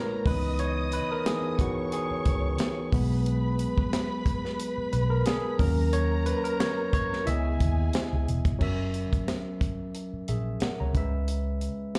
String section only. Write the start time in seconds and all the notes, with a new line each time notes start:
Already playing: A#4 A#5
0.25 D#5 D#6
1.59 C#5 C#6
2.92 B4 B5
5.60 A#4 A#5
7.27 G#4 G#5